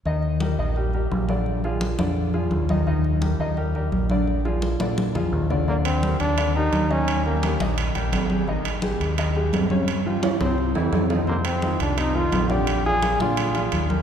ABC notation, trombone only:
X:1
M:4/4
L:1/8
Q:1/4=171
K:Eb
V:1 name="Trombone"
z8 | z8 | z8 | z8 |
B, C2 D2 E2 _D- | _D B,2 z4 z | z8 | z8 |
B, C2 D E F2 G- | G A2 F4 z |]